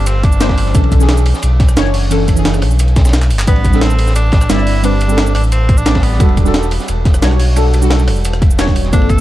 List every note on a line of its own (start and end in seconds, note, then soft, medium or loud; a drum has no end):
0.00 0.73 G1 loud
0.00 0.40 F3 loud
0.00 0.40 A#3 medium
0.00 0.41 C4 medium
0.00 0.76 G4 loud
0.00 0.76 A4 loud
0.00 0.42 C5 loud
0.06 0.25 C4 medium
0.06 closed hi-hat medium
0.06 ride medium
0.06 shaker medium
0.23 0.92 D4 loud
0.23 kick loud
0.23 closed hi-hat medium
0.23 ride medium
0.32 shaker medium
0.40 0.72 F3 medium
0.40 0.73 A#3 medium
0.40 0.73 C4 medium
0.40 0.73 C5 loud
0.40 snare loud
0.40 closed hi-hat medium
0.40 ride medium
0.40 shaker soft
0.49 kick medium
0.49 snare medium
0.49 ride medium
0.58 open hi-hat medium
0.58 ride medium
0.66 snare soft
0.74 1.33 B1 loud
0.74 0.97 E3 loud
0.74 0.98 C#4 medium
0.74 0.99 D4 medium
0.74 0.99 A4 loud
0.74 kick loud
0.74 closed hi-hat medium
0.74 ride medium
0.74 shaker medium
0.84 ride soft
0.92 kick medium
0.92 closed hi-hat medium
0.92 ride medium
0.92 shaker soft
0.99 1.57 E3 medium
0.99 1.58 C#4 medium
0.99 1.58 D4 medium
0.99 1.59 G#4 loud
0.99 snare soft
0.99 shaker medium
1.09 snare loud
1.09 closed hi-hat loud
1.09 ride loud
1.17 shaker medium
1.26 open hi-hat medium
1.26 ride medium
1.34 snare soft
1.34 shaker soft
1.42 1.76 B1 loud
1.42 closed hi-hat loud
1.42 ride medium
1.42 shaker medium
1.60 kick loud
1.60 snare medium
1.60 closed hi-hat medium
1.60 ride medium
1.69 cross-stick soft
1.69 shaker medium
1.76 2.64 F#1 medium
1.76 2.09 E3 medium
1.76 2.09 C#4 medium
1.76 2.09 D4 medium
1.76 2.10 C#5 loud
1.76 snare loud
1.76 closed hi-hat loud
1.76 ride medium
1.76 shaker medium
1.86 cross-stick soft
1.94 open hi-hat medium
2.10 2.34 E3 medium
2.10 2.35 C#4 medium
2.10 2.35 D4 medium
2.10 2.35 A4 loud
2.10 closed hi-hat loud
2.10 ride medium
2.10 shaker medium
2.28 kick medium
2.28 closed hi-hat medium
2.28 ride medium
2.28 shaker soft
2.35 2.93 E3 medium
2.35 2.94 C#4 medium
2.35 2.95 D4 medium
2.35 2.95 G#4 loud
2.35 shaker medium
2.45 snare loud
2.45 closed hi-hat medium
2.45 ride medium
2.54 cross-stick soft
2.54 shaker soft
2.62 3.32 B1 loud
2.62 cross-stick medium
2.62 open hi-hat medium
2.62 ride medium
2.71 shaker soft
2.79 closed hi-hat loud
2.79 ride medium
2.79 shaker medium
2.88 closed hi-hat soft
2.96 kick loud
2.96 snare loud
2.96 closed hi-hat medium
2.96 ride medium
2.96 shaker soft
3.05 snare medium
3.05 ride medium
3.05 shaker medium
3.09 snare medium
3.09 ride medium
3.13 snare loud
3.13 closed hi-hat loud
3.13 ride loud
3.13 shaker medium
3.22 clap medium
3.30 3.46 F#1 medium
3.30 open hi-hat medium
3.30 ride medium
3.30 shaker soft
3.39 snare soft
3.39 clap loud
3.47 4.31 A1 loud
3.47 3.70 G3 medium
3.47 3.83 B3 loud
3.47 3.71 C4 medium
3.47 3.71 D4 medium
3.47 3.72 B4 loud
3.47 kick loud
3.47 closed hi-hat loud
3.47 ride medium
3.47 shaker soft
3.56 ride soft
3.65 kick medium
3.65 closed hi-hat medium
3.65 ride medium
3.65 shaker soft
3.71 4.30 G3 medium
3.71 4.30 C4 medium
3.71 4.31 D4 medium
3.71 4.32 A4 loud
3.71 snare soft
3.71 shaker medium
3.81 4.15 C4 loud
3.81 snare loud
3.81 closed hi-hat loud
3.81 ride medium
3.90 shaker soft
3.99 open hi-hat medium
3.99 ride medium
4.07 snare medium
4.07 shaker soft
4.16 4.51 D4 loud
4.16 closed hi-hat loud
4.16 ride medium
4.16 shaker medium
4.32 4.48 A1 loud
4.32 kick loud
4.32 snare loud
4.32 closed hi-hat medium
4.32 ride medium
4.41 cross-stick soft
4.41 shaker medium
4.49 5.37 G1 loud
4.49 4.81 G3 medium
4.49 4.82 C4 medium
4.49 4.82 D4 medium
4.49 4.85 E4 loud
4.49 4.82 D5 loud
4.49 snare loud
4.49 closed hi-hat loud
4.49 ride medium
4.49 shaker medium
4.58 cross-stick soft
4.67 open hi-hat medium
4.83 5.06 G3 loud
4.83 5.07 C4 medium
4.83 5.34 D4 loud
4.83 5.08 D4 medium
4.83 5.08 B4 loud
4.83 closed hi-hat medium
4.83 ride medium
4.83 shaker soft
5.01 closed hi-hat medium
5.01 ride medium
5.01 shaker soft
5.08 5.66 G3 loud
5.08 5.67 C4 medium
5.08 5.67 D4 medium
5.08 5.68 A4 loud
5.08 shaker medium
5.17 snare loud
5.17 closed hi-hat medium
5.17 ride medium
5.27 shaker soft
5.35 6.19 A1 loud
5.35 5.42 D4 loud
5.35 cross-stick medium
5.35 open hi-hat medium
5.35 ride medium
5.44 shaker soft
5.52 5.79 C4 loud
5.52 closed hi-hat loud
5.52 ride medium
5.52 shaker medium
5.69 kick loud
5.69 closed hi-hat medium
5.69 ride medium
5.78 6.05 D4 loud
5.78 shaker medium
5.85 6.18 G3 medium
5.85 6.18 C4 medium
5.85 6.18 D4 medium
5.85 6.19 D5 loud
5.85 snare loud
5.85 closed hi-hat medium
5.85 ride medium
5.85 shaker soft
5.95 kick medium
5.95 snare loud
5.95 ride medium
6.03 6.37 B3 medium
6.03 open hi-hat medium
6.03 ride medium
6.13 snare soft
6.19 6.79 E1 loud
6.19 6.43 G3 medium
6.19 6.44 D4 medium
6.19 6.44 F#4 medium
6.19 6.44 A4 loud
6.19 kick loud
6.19 closed hi-hat medium
6.19 ride medium
6.19 shaker soft
6.29 ride soft
6.37 kick medium
6.37 closed hi-hat medium
6.37 ride medium
6.37 shaker soft
6.44 7.02 G3 loud
6.44 7.03 D4 medium
6.44 7.04 F#4 medium
6.44 7.04 A4 loud
6.44 snare soft
6.44 shaker medium
6.54 snare loud
6.54 closed hi-hat medium
6.54 ride medium
6.63 shaker soft
6.71 open hi-hat medium
6.71 ride medium
6.80 snare soft
6.80 shaker soft
6.88 7.21 E1 loud
6.88 closed hi-hat medium
6.88 ride medium
6.88 shaker soft
7.05 kick loud
7.05 snare medium
7.05 closed hi-hat medium
7.05 ride medium
7.14 cross-stick medium
7.14 shaker medium
7.21 8.09 B1 medium
7.21 7.54 G3 medium
7.21 7.54 D4 medium
7.21 7.55 F#4 medium
7.21 7.55 C#5 loud
7.21 snare loud
7.21 closed hi-hat medium
7.21 ride medium
7.21 shaker soft
7.31 cross-stick soft
7.39 open hi-hat medium
7.56 7.79 G3 loud
7.56 7.80 D4 medium
7.56 7.80 F#4 medium
7.56 7.81 A4 loud
7.56 closed hi-hat medium
7.56 ride medium
7.56 shaker soft
7.74 closed hi-hat medium
7.74 ride medium
7.74 shaker soft
7.80 8.39 G3 loud
7.80 8.39 D4 medium
7.80 8.40 F#4 medium
7.80 8.41 A4 loud
7.80 shaker medium
7.90 snare loud
7.90 closed hi-hat medium
7.90 ride medium
7.99 shaker soft
8.08 8.92 E1 loud
8.08 cross-stick soft
8.08 open hi-hat medium
8.08 ride medium
8.16 shaker soft
8.25 closed hi-hat loud
8.25 ride medium
8.25 shaker soft
8.33 cross-stick medium
8.33 closed hi-hat soft
8.42 kick loud
8.42 closed hi-hat medium
8.42 ride medium
8.51 shaker medium
8.58 8.90 G3 medium
8.58 8.91 D4 medium
8.58 8.91 F#4 medium
8.58 8.91 C#5 loud
8.58 snare loud
8.58 closed hi-hat medium
8.58 ride loud
8.58 shaker soft
8.68 kick medium
8.68 snare soft
8.76 open hi-hat medium
8.76 ride medium
8.85 snare soft
8.85 closed hi-hat soft
8.92 9.21 G1 loud
8.92 9.16 F3 loud
8.92 9.16 A#3 medium
8.92 9.17 C4 medium
8.92 9.12 D4 loud
8.92 9.17 A4 loud
8.92 kick loud
8.92 closed hi-hat medium
8.92 ride medium
8.92 shaker soft
9.02 ride soft
9.09 9.21 A4 loud
9.09 kick medium
9.09 closed hi-hat medium
9.09 ride medium
9.09 shaker soft
9.17 9.21 F3 loud